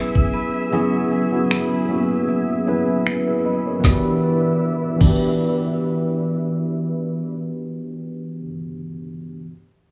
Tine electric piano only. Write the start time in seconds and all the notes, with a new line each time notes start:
Already playing: F#3 B3 C#4 E4 G#4
0.71 F#3 B3 C#4 E4 G#4
1.31 F#3 B3 C#4 E4 F#4
1.88 F#3 A#3 C#4 E4 F#4
1.95 B3
2.66 F#3 B3 C#4 E4 B4
3.27 G#4 B4
3.45 B4 D#5
3.66 A#4 C#5
3.79 E3 B3
3.84 D4 F#4
3.90 G4
4.96 E3 B3
5.01 D4 F#4
5.07 G4